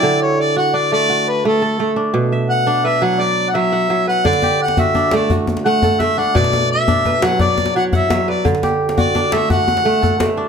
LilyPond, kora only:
<<
  \new Staff \with { instrumentName = "Kora" } { \time 12/8 \key d \major \tempo 4. = 114 e'16 r4. r16 d'4 fis'4. a'4 d'8~ | d'8 e''4. b'4 d''4. fis''4 b'8~ | b'8 g'4. d'4 fis'4. a'4 d'8~ | d'8 r4. b'4 d''4. fis''4 b'8~ |
b'8 g'4. d'4 fis'4. a'4 d'8 | }
  \new Staff \with { instrumentName = "Kora" } { \time 12/8 \key d \major d4 r8 fis'4 a4 r8 a4 a4 | b,4 r8 d'4 fis4 r8 fis4 fis4 | d4 r8 fis'4 a4 r8 a4 a4 | b,4 r8 d'4 fis4 r8 fis4 fis4 |
d4 r8 fis'4 a4 r8 a4 a4 | }
>>